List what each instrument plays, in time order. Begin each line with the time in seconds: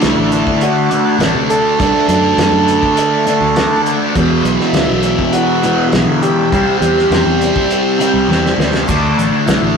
Already playing: distorted electric guitar D3 A3 D4, tonewheel organ A4 D5 F#5
0.02 fingered electric bass C2, transistor combo organ E4, snare, closed hi-hat
0.18 fingered electric bass A1
0.32 closed hi-hat
0.47 kick
0.61 transistor combo organ F#4, closed hi-hat
0.91 distorted electric guitar D3 A3 D4, closed hi-hat
1.18 fingered electric bass A1, distorted electric guitar D3 A3 D4, snare, closed hi-hat
1.35 fingered electric bass C3
1.50 transistor combo organ A4, closed hi-hat
1.80 fingered electric bass C2, distorted electric guitar D3 A3 D4, kick, closed hi-hat
2.08 fingered electric bass F#2, transistor combo organ A4, closed hi-hat
2.37 fingered electric bass F#2, snare, closed hi-hat
2.52 fingered electric bass F#2
2.68 closed hi-hat
2.83 kick
2.97 closed hi-hat
3.27 distorted electric guitar D3 A3 D4, closed hi-hat
3.41 fingered electric bass D2
3.56 distorted electric guitar D3 A3 D4, snare, closed hi-hat
3.86 closed hi-hat
4.15 distorted electric guitar E2 B2 E3, fingered electric bass E2, tonewheel organ E5 B5, kick, closed hi-hat
4.44 fingered electric bass B1, closed hi-hat
4.60 snare
4.73 fingered electric bass D2, transistor combo organ E4, snare, closed hi-hat
4.90 fingered electric bass B1
5.03 closed hi-hat
5.19 kick
5.33 transistor combo organ F#4, closed hi-hat
5.63 distorted electric guitar E2 B2 E3, closed hi-hat
5.92 fingered electric bass B1, distorted electric guitar E2 B2, snare, closed hi-hat
5.96 distorted electric guitar E3
6.06 fingered electric bass D3
6.22 transistor combo organ G4, closed hi-hat
6.52 fingered electric bass C2, distorted electric guitar C3 G3 C4, tonewheel organ C5 A5, kick, closed hi-hat
6.81 fingered electric bass E2, transistor combo organ G4, closed hi-hat
6.98 snare
7.10 fingered electric bass E2, snare, closed hi-hat
7.26 fingered electric bass E2
7.41 closed hi-hat
7.56 kick
7.71 closed hi-hat
8.00 distorted electric guitar C3 G3 C4, closed hi-hat
8.14 fingered electric bass C2
8.28 fingered electric bass E2, distorted electric guitar C3 G3 C4, snare
8.46 snare
8.58 fingered electric bass D2, snare
8.74 snare
8.87 fingered electric bass D2, distorted electric guitar D3 A3 D4, tonewheel organ D5 F#5, kick, closed hi-hat, crash, maracas
9.18 fingered electric bass A1, closed hi-hat, maracas
9.46 fingered electric bass C2, transistor combo organ E4, snare, closed hi-hat, maracas
9.61 fingered electric bass A1